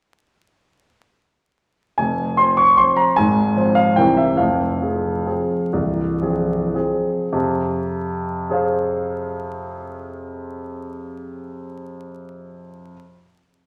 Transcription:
1.98 2.38 F1 soft
1.98 2.38 F2 soft
1.98 2.38 G#5 medium
2.37 2.75 F3 soft
2.37 2.75 C4 soft
2.37 2.75 C5 soft
2.37 2.58 C6 medium
2.57 2.78 C#6 medium
2.77 3.14 F3 soft
2.77 3.14 C4 soft
2.77 3.15 C5 soft
2.77 2.98 C6 medium
2.96 3.17 A#5 medium
3.16 3.56 G#1 medium
3.16 3.56 G#2 medium
3.16 3.76 G#5 medium
3.57 3.94 F3 soft
3.57 3.94 C4 soft
3.57 3.94 C5 soft
3.75 3.97 F5 medium
3.96 4.38 C2 soft
3.96 4.38 C3 medium
3.96 4.35 E3 soft
3.96 4.36 C4 soft
3.96 4.36 A#4 soft
3.96 4.18 G5 medium
4.17 4.39 E5 medium
4.37 4.80 F1 soft
4.37 4.79 F2 soft
4.37 6.73 F5 medium
4.81 5.22 F3 soft
4.81 5.22 C4 soft
4.81 5.23 G#4 soft
5.26 5.69 F3 soft
5.26 5.69 C4 soft
5.26 5.69 G#4 soft
5.73 6.20 C1 soft
5.73 6.20 C2 soft
6.22 6.71 F3 soft
6.22 6.71 C4 soft
6.22 6.71 G#4 soft
6.75 7.28 F3 soft
6.75 7.28 C4 soft
6.75 7.28 G#4 soft
7.32 11.96 F2 medium
7.32 11.96 C3 medium
8.50 12.27 G#4 soft
8.50 12.28 C5 soft
8.50 12.29 F5 soft

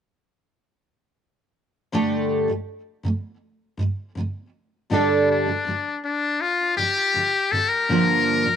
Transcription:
1.92 2.47 G2 medium
1.92 2.48 D3 medium
1.92 2.49 A3 medium
1.92 2.49 D4 medium
1.92 2.49 G4 medium
1.92 2.49 A4 medium
2.48 2.78 G2 soft
2.48 2.79 D3 soft
2.48 2.79 A3 soft
3.03 3.33 G2 soft
3.03 3.34 D3 medium
3.03 3.35 A3 medium
3.77 4.08 G2 medium
3.77 4.09 D3 medium
3.77 4.09 A3 medium
4.15 4.45 G2 medium
4.15 4.46 D3 medium
4.15 4.47 A3 medium
4.90 5.45 G2 medium
4.90 5.46 D3 medium
4.90 5.46 G3 medium
4.90 5.47 D4 medium
4.90 5.26 D4 medium
4.90 5.47 G4 medium
4.90 5.47 A4 medium
5.31 6.00 D4 medium
5.46 5.64 G2 soft
5.46 5.65 D3 soft
5.46 5.66 G3 soft
5.65 5.95 G2 medium
5.65 5.95 D3 medium
5.65 5.96 G3 medium
6.05 6.43 D4 medium
6.41 6.76 F4 medium
6.76 7.06 G2 soft
6.76 7.07 D3 soft
6.76 7.07 G3 medium
6.76 7.53 G4 medium
7.14 7.43 G2 medium
7.14 7.44 D3 medium
7.14 7.45 G3 medium
7.51 7.81 G2 medium
7.51 7.81 D3 medium
7.51 7.82 G3 medium
7.51 7.70 A4 medium
7.69 8.56 A#4 medium
7.89 8.43 G2 medium
7.89 8.44 D3 medium
7.89 8.45 F3 medium
7.89 8.45 A#3 medium
7.89 8.45 D4 medium
8.44 8.56 G2 soft
8.44 8.56 D3 soft
8.44 8.56 F3 soft

